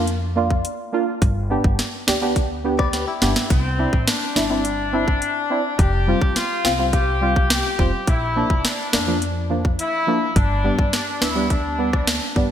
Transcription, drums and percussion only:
0.07 closed hi-hat medium
0.51 kick medium
0.65 closed hi-hat medium
1.22 kick loud
1.22 closed hi-hat medium
1.64 kick medium
1.79 snare medium
1.79 closed hi-hat medium
2.08 snare loud
2.36 kick medium
2.36 closed hi-hat medium
2.79 kick medium
2.79 cross-stick medium
2.93 snare medium
2.93 closed hi-hat medium
3.22 snare medium
3.36 snare medium
3.50 kick loud
3.50 closed hi-hat medium
3.93 kick medium
4.07 snare loud
4.07 closed hi-hat medium
4.36 snare loud
4.65 closed hi-hat medium
5.08 kick medium
5.22 closed hi-hat medium
5.79 kick loud
5.79 closed hi-hat medium
6.22 kick medium
6.36 snare medium
6.36 closed hi-hat medium
6.65 snare loud
6.93 kick medium
6.93 closed hi-hat medium
7.36 kick medium
7.50 snare loud
7.50 closed hi-hat medium
7.79 kick medium
8.07 kick loud
8.07 closed hi-hat medium
8.50 kick medium
8.65 snare loud
8.65 closed hi-hat medium
8.93 snare loud
9.22 closed hi-hat medium
9.65 kick medium
9.79 closed hi-hat medium
10.36 kick loud
10.36 closed hi-hat medium
10.79 kick medium
10.93 snare medium
10.93 closed hi-hat medium
11.22 snare loud
11.50 kick medium
11.50 closed hi-hat medium
11.93 kick medium
11.93 cross-stick medium
12.07 snare loud
12.07 closed hi-hat medium
12.36 kick medium

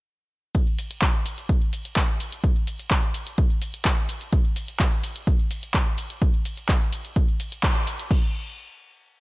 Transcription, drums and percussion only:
0.55 kick loud
0.55 closed hi-hat medium
0.55 ride medium
0.55 shaker soft
0.67 closed hi-hat soft
0.67 shaker soft
0.79 open hi-hat loud
0.79 ride medium
0.79 shaker medium
0.91 closed hi-hat medium
0.91 shaker soft
1.02 kick loud
1.02 clap loud
1.02 closed hi-hat medium
1.02 ride medium
1.02 shaker soft
1.14 closed hi-hat soft
1.14 shaker soft
1.26 open hi-hat loud
1.26 ride medium
1.26 shaker medium
1.38 closed hi-hat medium
1.38 shaker soft
1.49 kick loud
1.49 closed hi-hat medium
1.49 ride medium
1.49 shaker soft
1.61 closed hi-hat soft
1.61 shaker soft
1.73 open hi-hat loud
1.73 ride medium
1.73 shaker medium
1.85 closed hi-hat medium
1.85 shaker soft
1.96 kick loud
1.96 clap loud
1.96 closed hi-hat medium
1.96 ride medium
1.96 shaker soft
2.09 closed hi-hat soft
2.09 shaker soft
2.20 open hi-hat loud
2.20 ride medium
2.20 shaker medium
2.32 closed hi-hat medium
2.32 shaker soft
2.44 kick loud
2.44 closed hi-hat medium
2.44 ride medium
2.44 shaker soft
2.56 closed hi-hat soft
2.56 shaker soft
2.67 open hi-hat loud
2.67 ride medium
2.67 shaker medium
2.79 closed hi-hat medium
2.79 shaker soft
2.91 kick loud
2.91 clap loud
2.91 closed hi-hat medium
2.91 ride medium
2.91 shaker soft
3.03 closed hi-hat soft
3.03 shaker soft
3.14 open hi-hat loud
3.14 ride medium
3.14 shaker medium
3.27 closed hi-hat medium
3.27 shaker soft
3.38 kick loud
3.38 closed hi-hat medium
3.38 ride medium
3.38 shaker soft
3.50 closed hi-hat soft
3.50 shaker soft
3.62 open hi-hat loud
3.62 ride medium
3.62 shaker medium
3.74 closed hi-hat medium
3.74 shaker soft
3.85 kick loud
3.85 clap loud
3.85 closed hi-hat medium
3.85 ride medium
3.85 shaker soft
3.98 closed hi-hat soft
3.98 shaker soft
4.09 open hi-hat loud
4.09 ride medium
4.09 shaker medium
4.21 closed hi-hat medium
4.21 shaker soft
4.33 kick loud
4.33 closed hi-hat medium
4.33 ride medium
4.33 tambourine medium
4.33 shaker soft
4.45 closed hi-hat soft
4.45 shaker soft
4.56 open hi-hat loud
4.56 ride medium
4.56 tambourine loud
4.56 shaker medium
4.68 closed hi-hat medium
4.68 tambourine soft
4.68 shaker soft
4.79 kick loud
4.79 clap loud
4.79 closed hi-hat medium
4.79 ride medium
4.79 tambourine medium
4.79 shaker soft
4.91 closed hi-hat soft
4.91 tambourine soft
4.91 shaker soft
5.04 open hi-hat loud
5.04 ride medium
5.04 tambourine medium
5.04 shaker medium
5.16 closed hi-hat medium
5.16 tambourine soft
5.16 shaker soft
5.27 kick loud
5.27 closed hi-hat medium
5.27 ride medium
5.27 tambourine medium
5.27 shaker soft
5.39 closed hi-hat soft
5.39 tambourine soft
5.39 shaker soft
5.51 open hi-hat loud
5.51 ride medium
5.51 tambourine loud
5.51 shaker medium
5.63 closed hi-hat medium
5.63 tambourine soft
5.63 shaker soft
5.74 kick loud
5.74 clap loud
5.74 closed hi-hat medium
5.74 ride medium
5.74 tambourine medium
5.74 shaker soft
5.87 closed hi-hat soft
5.87 tambourine soft
5.87 shaker soft
5.97 open hi-hat loud
5.97 ride medium
5.97 tambourine loud
5.97 shaker medium
6.10 closed hi-hat medium
6.10 tambourine soft
6.10 shaker soft
6.22 kick loud
6.22 closed hi-hat medium
6.22 ride medium
6.22 shaker soft
6.34 closed hi-hat soft
6.34 shaker soft
6.45 open hi-hat loud
6.45 ride medium
6.45 shaker medium
6.57 closed hi-hat medium
6.57 shaker soft
6.69 kick loud
6.69 clap loud
6.69 closed hi-hat medium
6.69 ride medium
6.69 shaker soft
6.81 closed hi-hat soft
6.81 shaker soft
6.93 open hi-hat loud
6.93 ride medium
6.93 shaker medium
7.05 closed hi-hat medium
7.05 shaker soft
7.16 kick loud
7.16 closed hi-hat medium
7.16 ride medium
7.16 shaker soft
7.28 closed hi-hat soft
7.28 shaker soft
7.40 open hi-hat loud
7.40 ride medium
7.40 shaker medium
7.52 closed hi-hat medium
7.52 shaker soft
7.63 kick loud
7.63 clap loud
7.63 closed hi-hat medium
7.63 ride medium
7.63 shaker soft
7.76 closed hi-hat soft
7.76 shaker soft
7.87 open hi-hat loud
7.87 ride medium
7.87 shaker medium
7.99 closed hi-hat medium
7.99 shaker soft
8.11 kick loud
8.11 crash medium

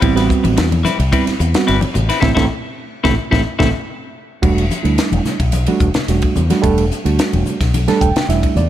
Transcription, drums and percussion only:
0.02 kick loud
0.02 ride medium
0.17 snare soft
0.17 ride medium
0.30 kick medium
0.30 hi-hat pedal medium
0.44 ride medium
0.44 high conga medium
0.57 snare loud
0.57 ride medium
0.72 ride medium
0.72 high conga medium
0.85 snare soft
0.85 hi-hat pedal medium
0.85 high conga medium
0.85 low conga medium
1.00 ride medium
1.13 kick medium
1.13 ride medium
1.27 snare soft
1.27 ride medium
1.40 hi-hat pedal medium
1.54 snare loud
1.54 ride medium
1.68 snare soft
1.68 ride medium
1.81 ride soft
1.81 high conga medium
1.95 hi-hat pedal medium
1.95 low conga medium
2.09 snare soft
2.09 ride medium
2.22 kick medium
2.22 snare medium
2.22 low conga loud
2.37 kick loud
2.37 snare medium
2.37 low conga loud
3.05 kick medium
3.05 snare medium
3.05 low conga medium
3.33 kick medium
3.33 snare medium
3.33 low conga medium
3.60 kick medium
3.60 snare medium
3.60 low conga loud
4.43 kick medium
4.43 crash medium
4.58 ride medium
4.71 hi-hat pedal medium
4.71 high conga medium
4.85 ride soft
4.98 snare medium
4.98 hi-hat pedal medium
4.98 ride medium
5.12 ride medium
5.12 high conga medium
5.25 snare soft
5.25 hi-hat pedal medium
5.25 low conga medium
5.40 kick medium
5.40 ride medium
5.52 hi-hat pedal medium
5.52 ride medium
5.52 high conga medium
5.66 ride medium
5.66 high conga medium
5.80 kick medium
5.80 hi-hat pedal medium
5.94 snare medium
5.94 ride medium
5.94 low conga medium
6.08 snare soft
6.08 hi-hat pedal medium
6.08 ride medium
6.22 kick medium
6.22 ride medium
6.36 hi-hat pedal medium
6.36 low conga medium
6.50 snare soft
6.50 ride medium
6.50 high conga medium
6.64 kick medium
6.64 hi-hat pedal medium
6.64 ride medium
6.78 ride medium
6.91 hi-hat pedal medium
7.06 ride medium
7.19 snare loud
7.19 hi-hat pedal medium
7.19 ride medium
7.33 ride medium
7.33 high conga medium
7.46 hi-hat pedal medium
7.46 low conga medium
7.61 kick medium
7.61 snare soft
7.61 ride medium
7.74 hi-hat pedal medium
7.74 ride medium
7.74 high conga medium
7.88 snare soft
7.88 ride medium
7.88 high conga medium
8.01 kick medium
8.01 hi-hat pedal medium
8.16 snare loud
8.16 ride medium
8.16 low conga medium
8.30 snare soft
8.30 hi-hat pedal medium
8.30 ride medium
8.43 kick medium
8.43 ride medium
8.56 hi-hat pedal medium
8.56 low conga medium

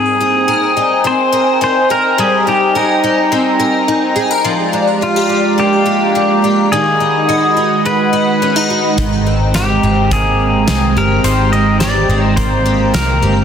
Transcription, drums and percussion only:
8.98 kick medium
8.98 closed hi-hat medium
9.54 snare medium
9.54 closed hi-hat medium
10.11 kick medium
10.11 closed hi-hat medium
10.68 snare loud
10.68 closed hi-hat medium
11.24 closed hi-hat medium
11.80 snare medium
11.80 closed hi-hat medium
12.37 kick medium
12.37 closed hi-hat medium
12.94 snare loud
12.94 closed hi-hat medium

